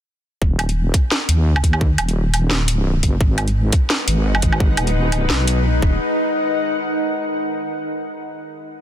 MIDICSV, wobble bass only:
0, 0, Header, 1, 2, 480
1, 0, Start_track
1, 0, Key_signature, -6, "minor"
1, 0, Tempo, 348837
1, 572, Time_signature, 4, 2, 24, 8
1, 12125, End_track
2, 0, Start_track
2, 0, Title_t, "Wobble bass"
2, 0, Program_c, 0, 39
2, 571, Note_on_c, 0, 27, 96
2, 1275, Note_off_c, 0, 27, 0
2, 1770, Note_on_c, 0, 39, 94
2, 2234, Note_off_c, 0, 39, 0
2, 2252, Note_on_c, 0, 39, 98
2, 2715, Note_off_c, 0, 39, 0
2, 2736, Note_on_c, 0, 27, 98
2, 4157, Note_off_c, 0, 27, 0
2, 4171, Note_on_c, 0, 30, 96
2, 4395, Note_off_c, 0, 30, 0
2, 4412, Note_on_c, 0, 32, 101
2, 5115, Note_off_c, 0, 32, 0
2, 5610, Note_on_c, 0, 32, 94
2, 6074, Note_off_c, 0, 32, 0
2, 6094, Note_on_c, 0, 32, 99
2, 6556, Note_off_c, 0, 32, 0
2, 6573, Note_on_c, 0, 27, 98
2, 7276, Note_off_c, 0, 27, 0
2, 7295, Note_on_c, 0, 35, 99
2, 7996, Note_off_c, 0, 35, 0
2, 8013, Note_on_c, 0, 27, 97
2, 8236, Note_off_c, 0, 27, 0
2, 12125, End_track
0, 0, End_of_file